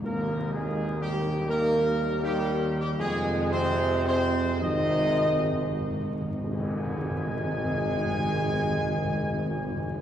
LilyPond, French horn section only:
\new Staff \with { instrumentName = "French horn section" } { \clef bass \time 4/4 \key aes \major \tempo 4 = 71 \tuplet 3/2 { bes4 aes8~ aes8 g4 } bes4 g8. g16 | \tuplet 3/2 { aes4 c'8~ c'8 c'4 } ees'4. r8 | aes1 | }